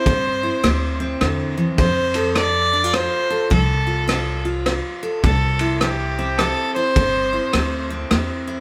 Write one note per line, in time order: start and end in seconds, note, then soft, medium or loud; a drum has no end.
0.00 1.00 C4 medium
0.00 1.01 C5 medium
0.06 0.49 G2 medium
0.06 0.59 C3 medium
0.06 kick loud
0.06 ride medium
0.43 1.77 E4 soft
0.64 1.13 D2 medium
0.64 1.17 G3 medium
0.64 cross-stick medium
0.64 ride medium
1.00 2.36 C4 medium
1.21 1.70 E2 medium
1.21 1.57 D3 medium
1.21 cross-stick medium
1.21 ride medium
1.58 1.79 E3 medium
1.78 3.06 F2 medium
1.78 2.32 F3 medium
1.78 2.32 C5 medium
1.78 kick loud
1.78 ride medium
2.14 3.29 A4 medium
2.14 ride medium
2.35 2.90 C4 medium
2.35 2.96 D5 medium
2.35 cross-stick medium
2.35 ride medium
2.73 2.84 D4 medium
2.84 3.52 F4 soft
2.94 3.47 C4 medium
2.94 3.52 C5 medium
2.94 cross-stick medium
2.94 ride medium
3.30 3.49 A4 medium
3.50 4.78 C2 medium
3.50 4.04 F3 medium
3.50 4.41 A4 medium
3.50 kick loud
3.50 ride medium
3.87 4.44 F4 soft
4.08 4.61 C4 medium
4.08 cross-stick medium
4.08 ride medium
4.45 5.21 F4 medium
4.66 5.20 C4 medium
4.66 cross-stick medium
4.66 ride soft
5.03 5.22 A4 medium
5.23 6.51 C2 medium
5.23 5.77 C3 medium
5.23 5.77 A4 medium
5.23 kick loud
5.23 ride medium
5.59 6.75 E4 medium
5.59 ride medium
5.80 6.35 G3 medium
5.80 6.40 G4 medium
5.80 cross-stick medium
5.80 ride medium
6.19 7.90 C4 medium
6.38 6.93 G3 medium
6.38 6.73 A4 medium
6.38 cross-stick medium
6.38 ride medium
6.74 6.95 E4 medium
6.74 7.85 C5 medium
6.96 7.38 G1 medium
6.96 7.50 C3 medium
6.96 kick loud
6.96 ride medium
7.33 8.46 E4 soft
7.53 8.03 D2 medium
7.53 8.07 G3 medium
7.53 cross-stick medium
7.53 ride medium
7.90 8.60 C4 medium
8.11 8.60 E2 medium
8.11 8.60 G3 medium
8.11 cross-stick medium
8.11 ride medium
8.47 8.60 E4 medium